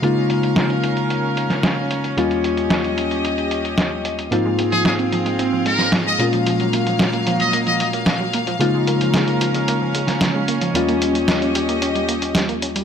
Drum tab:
HH |x-xxxxxxx-xxx-xx|xxxxxxxxxxxxx-xx|x-xxxxxxx-xxx-xx|xxxxxxxxxxxxx-xx|
SD |----o------oo---|----o-------o---|----o------oo---|----o-------o---|

HH |x-xxxxxxx-xxx-xx|xxxxxxxxxxxxxxxx|
SD |----o------oo---|----o-------o---|